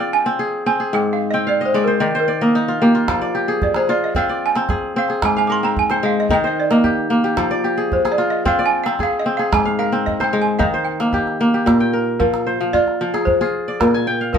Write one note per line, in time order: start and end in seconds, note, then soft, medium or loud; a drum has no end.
0.00 0.98 F3 medium
0.00 0.45 A#3 medium
0.00 0.26 C4 medium
0.00 1.37 F4 medium
0.00 0.39 G#4 medium
0.00 1.10 D5 medium
0.13 0.63 G#5 loud
0.26 0.66 C4 medium
0.39 0.79 G#4 medium
0.66 1.33 C4 medium
0.66 0.94 G#5 medium
0.80 1.40 G#4 medium
0.93 2.06 G#2 medium
0.93 1.12 G5 medium
1.13 1.29 F5 medium
1.31 3.14 C4 medium
1.31 1.48 D#5 medium
1.31 1.80 G5 medium
1.47 1.66 D5 medium
1.47 2.47 F5 medium
1.61 2.06 D#5 medium
1.65 1.84 C5 medium
1.74 2.06 G#3 medium
1.74 2.00 D5 medium
1.84 2.19 A#4 medium
1.84 2.14 C5 medium
2.00 3.13 D#3 medium
2.00 2.27 D5 medium
2.15 3.34 C5 medium
2.20 2.69 A#4 medium
2.28 2.61 D5 medium
2.41 2.81 A#3 medium
2.41 3.28 D#5 medium
2.55 3.28 D#4 medium
2.68 2.94 F4 medium
2.82 4.74 A#3 medium
2.82 3.34 G4 medium
2.95 3.89 F4 medium
3.08 5.28 F3 medium
3.08 calabash thump medium
3.08 calabash click medium
3.22 4.29 D5 medium
3.35 3.82 G4 medium
3.35 calabash click soft
3.48 3.76 G#4 medium
3.62 3.75 D5 medium
3.62 calabash thump medium
3.74 4.69 G#4 medium
3.74 3.88 C5 medium
3.74 calabash click medium
3.89 4.16 F4 medium
3.89 4.02 D5 medium
4.04 4.17 D#5 medium
4.15 4.56 C4 medium
4.15 5.67 F4 medium
4.15 4.44 F5 medium
4.15 calabash thump medium
4.29 5.40 D5 medium
4.46 4.99 G#5 loud
4.56 4.96 C4 medium
4.56 calabash click medium
4.69 5.09 G#4 medium
4.69 calabash thump medium
4.69 calabash click soft
4.96 5.63 C4 medium
4.96 5.25 F5 medium
5.08 6.46 G#4 medium
5.08 calabash click soft
5.22 6.35 G#2 medium
5.22 5.37 G#5 medium
5.22 calabash thump medium
5.22 calabash click medium
5.37 6.36 F5 medium
5.37 5.42 G#5 medium
5.47 6.77 A#4 medium
5.47 5.50 D6 medium
5.47 calabash click soft
5.52 5.63 C6 loud
5.63 7.43 C4 medium
5.63 5.78 A#5 medium
5.77 5.92 G#5 medium
5.77 calabash thump medium
5.90 6.44 C5 medium
5.90 6.04 G5 medium
5.90 calabash click medium
6.03 6.35 G#3 medium
6.03 6.18 F5 medium
6.20 6.32 D#5 medium
6.29 7.42 D#3 medium
6.29 7.57 D#4 medium
6.29 6.44 G5 medium
6.29 calabash thump medium
6.44 7.63 C5 medium
6.44 6.58 D#5 medium
6.60 6.71 D5 medium
6.71 7.10 A#3 medium
6.71 7.48 D#5 medium
6.71 calabash click soft
6.84 7.24 G4 medium
6.84 calabash thump medium
6.84 calabash click soft
7.10 9.03 A#3 medium
7.24 7.64 G4 medium
7.24 calabash click soft
7.37 9.57 F3 medium
7.37 calabash thump medium
7.37 calabash click medium
7.51 8.58 D5 medium
7.64 8.11 G4 medium
7.64 calabash click soft
7.78 8.04 G#4 medium
7.92 8.10 C5 medium
7.92 calabash thump medium
8.05 9.00 G#4 medium
8.05 calabash click soft
8.12 8.29 D5 medium
8.18 8.45 F4 medium
8.30 8.45 D#5 medium
8.45 8.86 C4 medium
8.45 9.97 F4 medium
8.45 8.65 F5 medium
8.45 calabash thump medium
8.59 9.70 D5 medium
8.66 8.73 G#5 loud
8.84 9.25 C4 medium
8.84 8.99 F5 medium
8.84 calabash click medium
8.99 9.39 G#4 medium
8.99 9.19 F5 loud
8.99 calabash thump medium
8.99 calabash click soft
9.19 9.36 D#5 medium
9.26 9.92 C4 medium
9.37 10.76 G#4 medium
9.37 9.44 F5 medium
9.37 calabash click soft
9.52 10.64 G#2 medium
9.52 9.80 G#5 loud
9.52 calabash thump medium
9.52 calabash click medium
9.65 10.65 F5 medium
9.65 calabash click soft
9.79 11.06 A#4 medium
9.79 10.04 F5 medium
9.92 11.72 C4 medium
9.92 calabash click soft
10.06 10.24 D#5 medium
10.06 calabash thump medium
10.06 calabash click soft
10.20 10.73 C5 medium
10.20 10.42 G5 medium
10.20 calabash click soft
10.33 10.64 G#3 medium
10.42 10.60 G#5 medium
10.47 calabash click soft
10.59 11.71 D#3 medium
10.59 12.21 D#4 medium
10.59 10.87 F5 medium
10.59 calabash thump medium
10.74 11.92 C5 medium
10.85 11.35 G5 medium
11.00 11.40 A#3 medium
11.00 calabash click soft
11.13 11.54 G4 medium
11.13 calabash thump medium
11.13 calabash click soft
11.27 calabash click soft
11.41 13.34 A#3 medium
11.54 12.95 G4 medium
11.54 calabash click soft
11.66 12.79 A#2 medium
11.66 calabash thump medium
11.66 calabash click medium
11.80 12.73 G5 medium
11.93 13.21 A#4 medium
12.20 12.59 F3 medium
12.20 12.75 A#4 medium
12.20 calabash thump medium
12.34 calabash click soft
12.47 13.65 C5 medium
12.47 calabash click soft
12.61 12.79 F3 medium
12.73 13.40 F4 medium
12.73 13.29 D5 loud
12.73 calabash thump medium
12.88 calabash click soft
13.01 13.86 F3 medium
13.14 13.40 G#4 medium
13.14 calabash click soft
13.25 13.81 C5 medium
13.25 calabash thump medium
13.41 14.38 F4 medium
13.41 14.13 G#4 medium
13.68 14.38 D5 medium
13.80 14.38 A#2 medium
13.80 14.32 A#4 medium
13.80 calabash thump medium
13.80 calabash click medium
13.94 14.38 G#5 medium
14.07 14.38 G5 medium
14.21 14.38 F5 medium
14.33 14.38 F3 medium
14.33 14.38 A#4 medium
14.33 14.38 D#5 medium
14.33 calabash thump medium